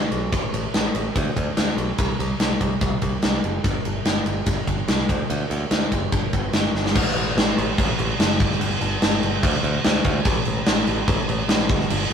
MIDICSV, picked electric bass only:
0, 0, Header, 1, 2, 480
1, 0, Start_track
1, 0, Tempo, 414079
1, 370, Time_signature, 4, 2, 24, 8
1, 14063, End_track
2, 0, Start_track
2, 0, Title_t, "Picked electric bass"
2, 0, Program_c, 0, 34
2, 128, Note_on_c, 0, 35, 77
2, 377, Note_off_c, 0, 35, 0
2, 377, Note_on_c, 0, 33, 84
2, 536, Note_off_c, 0, 33, 0
2, 611, Note_on_c, 0, 33, 82
2, 772, Note_off_c, 0, 33, 0
2, 857, Note_on_c, 0, 33, 79
2, 1016, Note_off_c, 0, 33, 0
2, 1094, Note_on_c, 0, 33, 87
2, 1254, Note_off_c, 0, 33, 0
2, 1348, Note_on_c, 0, 38, 91
2, 1504, Note_off_c, 0, 38, 0
2, 1583, Note_on_c, 0, 38, 85
2, 1741, Note_off_c, 0, 38, 0
2, 1819, Note_on_c, 0, 38, 89
2, 1978, Note_off_c, 0, 38, 0
2, 2050, Note_on_c, 0, 35, 82
2, 2213, Note_off_c, 0, 35, 0
2, 2309, Note_on_c, 0, 36, 89
2, 2466, Note_off_c, 0, 36, 0
2, 2541, Note_on_c, 0, 36, 87
2, 2701, Note_off_c, 0, 36, 0
2, 2780, Note_on_c, 0, 36, 80
2, 2940, Note_off_c, 0, 36, 0
2, 3021, Note_on_c, 0, 36, 94
2, 3181, Note_off_c, 0, 36, 0
2, 3265, Note_on_c, 0, 36, 89
2, 3424, Note_off_c, 0, 36, 0
2, 3502, Note_on_c, 0, 36, 91
2, 3662, Note_off_c, 0, 36, 0
2, 3753, Note_on_c, 0, 36, 93
2, 3910, Note_off_c, 0, 36, 0
2, 3988, Note_on_c, 0, 30, 87
2, 4147, Note_off_c, 0, 30, 0
2, 4216, Note_on_c, 0, 31, 87
2, 4379, Note_off_c, 0, 31, 0
2, 4473, Note_on_c, 0, 31, 83
2, 4631, Note_off_c, 0, 31, 0
2, 4697, Note_on_c, 0, 31, 82
2, 4860, Note_off_c, 0, 31, 0
2, 4938, Note_on_c, 0, 31, 88
2, 5101, Note_off_c, 0, 31, 0
2, 5172, Note_on_c, 0, 31, 91
2, 5337, Note_off_c, 0, 31, 0
2, 5417, Note_on_c, 0, 31, 82
2, 5581, Note_off_c, 0, 31, 0
2, 5653, Note_on_c, 0, 36, 88
2, 5818, Note_off_c, 0, 36, 0
2, 5899, Note_on_c, 0, 38, 82
2, 6062, Note_off_c, 0, 38, 0
2, 6141, Note_on_c, 0, 38, 85
2, 6303, Note_off_c, 0, 38, 0
2, 6377, Note_on_c, 0, 38, 86
2, 6541, Note_off_c, 0, 38, 0
2, 6617, Note_on_c, 0, 38, 85
2, 6781, Note_off_c, 0, 38, 0
2, 6862, Note_on_c, 0, 30, 86
2, 7024, Note_off_c, 0, 30, 0
2, 7104, Note_on_c, 0, 31, 90
2, 7266, Note_off_c, 0, 31, 0
2, 7347, Note_on_c, 0, 31, 84
2, 7508, Note_off_c, 0, 31, 0
2, 7571, Note_on_c, 0, 31, 84
2, 7737, Note_off_c, 0, 31, 0
2, 7803, Note_on_c, 0, 31, 79
2, 8068, Note_off_c, 0, 31, 0
2, 8068, Note_on_c, 0, 33, 89
2, 8235, Note_off_c, 0, 33, 0
2, 8292, Note_on_c, 0, 33, 91
2, 8464, Note_off_c, 0, 33, 0
2, 8527, Note_on_c, 0, 33, 84
2, 8701, Note_off_c, 0, 33, 0
2, 8773, Note_on_c, 0, 33, 96
2, 8945, Note_off_c, 0, 33, 0
2, 9025, Note_on_c, 0, 33, 94
2, 9193, Note_off_c, 0, 33, 0
2, 9257, Note_on_c, 0, 33, 95
2, 9427, Note_off_c, 0, 33, 0
2, 9496, Note_on_c, 0, 30, 91
2, 9740, Note_off_c, 0, 30, 0
2, 9740, Note_on_c, 0, 31, 91
2, 9908, Note_off_c, 0, 31, 0
2, 9966, Note_on_c, 0, 31, 94
2, 10138, Note_off_c, 0, 31, 0
2, 10213, Note_on_c, 0, 31, 98
2, 10383, Note_off_c, 0, 31, 0
2, 10463, Note_on_c, 0, 31, 84
2, 10629, Note_off_c, 0, 31, 0
2, 10696, Note_on_c, 0, 31, 94
2, 10864, Note_off_c, 0, 31, 0
2, 10930, Note_on_c, 0, 38, 97
2, 11100, Note_off_c, 0, 38, 0
2, 11164, Note_on_c, 0, 38, 90
2, 11335, Note_off_c, 0, 38, 0
2, 11425, Note_on_c, 0, 38, 100
2, 11589, Note_off_c, 0, 38, 0
2, 11645, Note_on_c, 0, 38, 93
2, 11815, Note_off_c, 0, 38, 0
2, 11890, Note_on_c, 0, 33, 96
2, 12058, Note_off_c, 0, 33, 0
2, 12132, Note_on_c, 0, 33, 97
2, 12299, Note_off_c, 0, 33, 0
2, 12373, Note_on_c, 0, 33, 89
2, 12539, Note_off_c, 0, 33, 0
2, 12605, Note_on_c, 0, 33, 98
2, 12774, Note_off_c, 0, 33, 0
2, 12841, Note_on_c, 0, 33, 99
2, 13011, Note_off_c, 0, 33, 0
2, 13077, Note_on_c, 0, 33, 96
2, 13248, Note_off_c, 0, 33, 0
2, 13312, Note_on_c, 0, 33, 102
2, 13556, Note_on_c, 0, 31, 85
2, 13573, Note_off_c, 0, 33, 0
2, 13726, Note_off_c, 0, 31, 0
2, 13797, Note_on_c, 0, 31, 96
2, 13967, Note_off_c, 0, 31, 0
2, 14063, End_track
0, 0, End_of_file